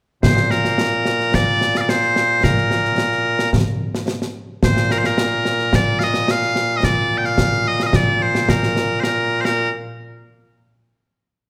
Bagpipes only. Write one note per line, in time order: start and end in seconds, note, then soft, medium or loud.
0.23 3.50 A#2 medium
0.23 0.51 C5 medium
0.51 1.35 A#4 medium
1.35 1.77 D5 loud
1.77 1.89 D5 medium
1.77 1.81 F5 medium
1.89 2.44 C5 medium
2.44 3.50 A#4 medium
4.64 9.70 A#2 medium
4.64 4.92 C5 medium
4.92 4.98 A#4 medium
4.98 5.06 C5 medium
5.06 5.75 A#4 medium
5.75 5.99 D5 medium
5.99 6.03 F5 medium
6.03 6.31 D#5 medium
6.31 6.77 F5 loud
6.77 6.84 D#5 medium
6.84 7.18 D5 loud
7.18 7.26 G5 medium
7.26 7.68 F5 loud
7.68 7.83 D#5 medium
7.83 7.96 D#5 medium
7.83 7.86 F5 medium
7.96 8.22 D5 medium
8.22 8.50 C5 medium
8.50 9.00 A#4 medium
9.00 9.41 A#4 medium
9.00 9.04 C5 medium
9.41 9.70 A#4 medium
9.41 9.45 C5 medium